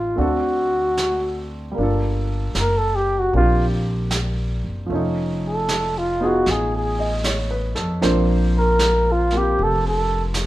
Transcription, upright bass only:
0.00 0.13 A1 medium
0.18 1.73 D2 medium
1.78 2.52 G1 medium
2.55 3.29 F#1 medium
3.33 4.61 A#1 medium
4.64 4.88 F#1 medium
4.90 6.42 F1 medium
6.47 7.72 A1 medium
7.78 8.01 F2 medium
8.03 9.53 A#1 medium
9.59 10.46 F1 medium

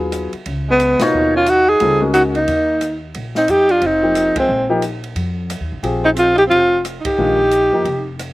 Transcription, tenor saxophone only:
0.71 1.05 B3 medium
1.03 1.36 D#4 medium
1.37 1.51 F4 medium
1.50 1.71 F#4 medium
1.69 2.02 G#4 medium
2.14 2.23 F#4 medium
2.36 2.99 D#4 medium
3.37 3.52 D#4 medium
3.50 3.73 G4 medium
3.71 3.88 F4 medium
3.86 4.38 D#4 medium
4.39 4.69 C4 medium
6.05 6.11 D#4 medium
6.18 6.37 F4 medium
6.38 6.44 G4 medium
6.50 6.82 F4 medium
7.06 8.16 G4 medium

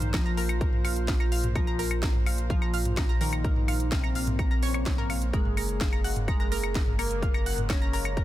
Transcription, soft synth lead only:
0.00 0.15 D#4 loud
0.14 1.46 F4 loud
1.56 2.41 F4 loud
2.50 3.12 F4 loud
3.21 3.93 D#4 loud
3.92 5.24 C4 loud
5.33 6.19 G#4 loud
6.28 6.89 G#4 loud
6.99 7.60 A#4 loud
7.70 8.24 C#5 loud

